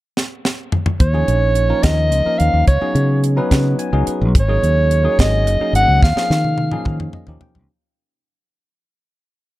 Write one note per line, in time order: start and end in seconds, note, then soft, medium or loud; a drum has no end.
0.17 snare medium
0.45 snare medium
0.72 mid tom medium
0.86 mid tom medium
1.00 1.22 D#2 medium
1.00 1.84 C#5 medium
1.00 kick medium
1.00 closed hi-hat medium
1.13 1.66 F3 medium
1.13 1.66 A#3 medium
1.13 1.66 C#4 medium
1.13 1.66 D#4 medium
1.13 1.67 G#4 medium
1.28 1.71 A#1 medium
1.28 closed hi-hat medium
1.55 closed hi-hat medium
1.69 2.22 F3 medium
1.69 2.22 A#3 medium
1.69 2.22 C#4 medium
1.69 2.22 D#4 medium
1.69 2.23 A#4 medium
1.83 2.12 D#2 medium
1.83 2.40 D#5 medium
1.83 kick medium
1.83 snare medium
1.83 closed hi-hat medium
2.12 2.23 C#2 medium
2.12 closed hi-hat medium
2.25 2.68 F3 medium
2.25 2.68 A#3 medium
2.25 2.68 C#4 medium
2.25 2.68 D#4 medium
2.25 2.68 A#4 medium
2.38 2.51 D#2 medium
2.38 2.67 F5 medium
2.38 closed hi-hat medium
2.54 2.65 D#2 medium
2.67 2.79 C#2 medium
2.67 3.27 C#5 medium
2.67 kick medium
2.67 closed hi-hat medium
2.81 3.34 F#3 medium
2.81 3.34 B3 medium
2.81 3.34 C#4 medium
2.81 3.34 D#4 medium
2.81 3.34 G#4 medium
2.95 3.38 C#3 medium
2.95 closed hi-hat medium
3.24 closed hi-hat medium
3.36 3.89 F#3 medium
3.36 3.90 B3 medium
3.36 3.90 C#4 medium
3.36 3.90 D#4 medium
3.36 3.90 B4 medium
3.51 3.73 C#3 medium
3.51 kick medium
3.51 snare medium
3.51 closed hi-hat medium
3.79 4.05 G#5 medium
3.79 closed hi-hat medium
3.93 4.04 C#2 medium
3.93 4.35 F#3 medium
3.93 4.35 B3 medium
3.93 4.35 C#4 medium
3.93 4.35 D#4 medium
3.93 4.35 G#4 medium
4.07 4.33 B4 medium
4.07 muted fingered electric bass stroke soft
4.07 closed hi-hat medium
4.21 4.32 B1 medium
4.35 4.57 G#1 medium
4.35 kick medium
4.35 closed hi-hat medium
4.40 5.17 C#5 medium
4.48 5.01 F#3 medium
4.48 5.01 A#3 medium
4.48 5.01 C#4 medium
4.48 5.01 D#4 medium
4.48 5.02 G#4 medium
4.63 5.06 D#2 medium
4.63 closed hi-hat soft
4.91 closed hi-hat soft
5.03 5.57 F#3 medium
5.03 5.57 A#3 medium
5.03 5.57 C#4 medium
5.03 5.57 D#4 medium
5.03 5.57 G#4 medium
5.19 5.47 G#1 medium
5.19 5.72 D#5 medium
5.19 kick medium
5.19 snare medium
5.19 closed hi-hat medium
5.47 5.58 F#1 medium
5.47 closed hi-hat medium
5.60 6.02 F#3 medium
5.60 6.03 A#3 medium
5.60 6.03 C#4 medium
5.60 6.03 D#4 medium
5.60 6.03 G#4 medium
5.73 5.85 G#1 medium
5.73 6.01 F#5 medium
5.73 closed hi-hat medium
5.88 5.99 C#2 medium
6.03 6.13 D#2 medium
6.03 7.11 F5 medium
6.03 kick medium
6.03 snare soft
6.16 6.69 F3 medium
6.16 6.69 A#3 medium
6.16 6.69 C#4 medium
6.16 6.69 D#4 medium
6.16 6.69 G#4 medium
6.16 muted fingered electric bass stroke soft
6.16 snare soft
6.30 6.73 D#3 medium
6.30 snare medium
6.44 high tom soft
6.58 high tom medium
6.71 7.24 F3 medium
6.71 7.25 A#3 medium
6.71 7.25 C#4 medium
6.71 7.25 D#4 medium
6.71 7.25 G#4 medium
6.71 mid tom medium
6.85 7.08 D#3 medium
6.85 kick medium
6.85 mid tom medium
7.00 mid tom medium
7.13 7.40 D#5 medium
7.13 mid tom medium
7.27 7.39 D#2 medium
7.27 7.70 F3 medium
7.27 7.70 A#3 medium
7.27 7.70 C#4 medium
7.27 7.70 D#4 medium
7.27 7.70 G4 medium
7.27 floor tom medium
7.41 7.68 G5 medium
7.41 floor tom medium
7.55 7.67 C#2 medium
7.55 floor tom medium